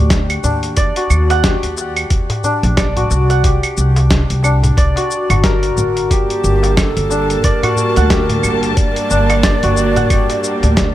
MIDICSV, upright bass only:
0, 0, Header, 1, 2, 480
1, 0, Start_track
1, 0, Key_signature, -2, "minor"
1, 0, Tempo, 666667
1, 556, Time_signature, 4, 2, 24, 8
1, 7881, End_track
2, 0, Start_track
2, 0, Title_t, "Upright bass"
2, 0, Program_c, 0, 32
2, 0, Note_on_c, 0, 38, 95
2, 280, Note_off_c, 0, 38, 0
2, 315, Note_on_c, 0, 39, 79
2, 644, Note_off_c, 0, 39, 0
2, 795, Note_on_c, 0, 39, 91
2, 1124, Note_off_c, 0, 39, 0
2, 1177, Note_on_c, 0, 39, 86
2, 1480, Note_off_c, 0, 39, 0
2, 1517, Note_on_c, 0, 39, 75
2, 1624, Note_off_c, 0, 39, 0
2, 1895, Note_on_c, 0, 34, 96
2, 2199, Note_off_c, 0, 34, 0
2, 2237, Note_on_c, 0, 36, 88
2, 2565, Note_off_c, 0, 36, 0
2, 2718, Note_on_c, 0, 36, 89
2, 3046, Note_off_c, 0, 36, 0
2, 3097, Note_on_c, 0, 36, 82
2, 3400, Note_off_c, 0, 36, 0
2, 3437, Note_on_c, 0, 36, 72
2, 3544, Note_off_c, 0, 36, 0
2, 3815, Note_on_c, 0, 31, 96
2, 4119, Note_off_c, 0, 31, 0
2, 4158, Note_on_c, 0, 31, 80
2, 4486, Note_off_c, 0, 31, 0
2, 4637, Note_on_c, 0, 31, 87
2, 4965, Note_off_c, 0, 31, 0
2, 5017, Note_on_c, 0, 31, 85
2, 5320, Note_off_c, 0, 31, 0
2, 5358, Note_on_c, 0, 31, 75
2, 5465, Note_off_c, 0, 31, 0
2, 5739, Note_on_c, 0, 38, 93
2, 6041, Note_off_c, 0, 38, 0
2, 6077, Note_on_c, 0, 31, 84
2, 6405, Note_off_c, 0, 31, 0
2, 6558, Note_on_c, 0, 31, 84
2, 6886, Note_off_c, 0, 31, 0
2, 6936, Note_on_c, 0, 31, 90
2, 7240, Note_off_c, 0, 31, 0
2, 7275, Note_on_c, 0, 31, 77
2, 7384, Note_off_c, 0, 31, 0
2, 7654, Note_on_c, 0, 38, 91
2, 7881, Note_off_c, 0, 38, 0
2, 7881, End_track
0, 0, End_of_file